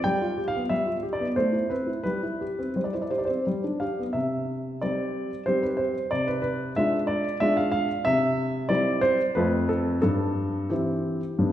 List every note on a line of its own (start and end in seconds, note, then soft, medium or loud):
0.04 0.21 G3 medium
0.04 0.44 G5 medium
0.22 0.39 F4 soft
0.38 0.55 G4 soft
0.48 0.61 F5 medium
0.56 0.72 B3 soft
0.69 0.86 G3 soft
0.69 0.96 E5 medium
0.86 1.04 F4 soft
1.03 1.20 G4 soft
1.13 1.27 D5 medium
1.20 1.37 B3 soft
1.36 1.53 A3 medium
1.36 1.70 C5 medium
1.53 1.71 E4 soft
1.70 1.89 C4 soft
1.70 2.01 B4 medium
1.87 2.05 E4 soft
2.04 2.22 G3 soft
2.04 2.71 B4 medium
2.23 2.41 E4 soft
2.41 2.59 G4 soft
2.59 2.77 C4 soft
2.76 2.93 G3 soft
2.76 2.85 C5 soft
2.84 2.93 D5 soft
2.93 3.12 E4 soft
2.93 3.02 C5 soft
3.02 3.10 D5 soft
3.10 3.29 G4 soft
3.10 3.19 C5 soft
3.18 3.27 D5 soft
3.25 3.45 C5 soft
3.29 3.46 C4 soft
3.47 3.63 G3 soft
3.64 3.82 D4 soft
3.80 3.99 G4 soft
3.80 4.01 F5 medium
3.99 4.16 B3 soft
4.13 4.79 C3 soft
4.13 4.81 E5 medium
4.82 5.29 G3 soft
4.82 5.30 C4 soft
4.82 5.30 G4 soft
4.82 5.43 D5 medium
5.46 5.94 G3 soft
5.46 5.94 C4 soft
5.46 5.94 G4 soft
5.46 5.63 C5 medium
5.63 5.79 B4 medium
5.77 6.10 C5 medium
6.11 6.74 C3 soft
6.11 6.27 D5 medium
6.27 6.40 B4 medium
6.42 6.72 B4 medium
6.76 7.23 G#3 soft
6.76 7.24 D4 soft
6.76 7.24 F4 soft
6.76 6.96 E5 medium
7.07 7.37 D5 medium
7.40 7.87 G#3 soft
7.40 7.88 D4 soft
7.40 7.88 F4 soft
7.40 7.57 E5 medium
7.57 7.70 F5 medium
7.72 8.04 F5 medium
8.05 8.68 C3 medium
8.05 8.70 E5 medium
8.69 9.17 G3 soft
8.69 9.17 C4 soft
8.69 9.17 E4 soft
8.69 9.02 D5 medium
9.01 9.21 C5 medium
9.35 10.01 F2 medium
9.35 9.98 A3 soft
9.35 9.99 C4 soft
9.35 9.99 F4 soft
9.35 9.68 B4 medium
9.69 10.00 A4 medium
10.02 10.69 G2 medium
10.02 10.70 A4 medium
10.70 11.20 E3 soft
10.70 11.20 C4 soft
10.70 11.20 E4 soft
10.70 11.52 G4 medium
11.39 11.52 G2 medium
11.39 11.52 G3 soft
11.39 11.52 B3 soft
11.39 11.52 D4 soft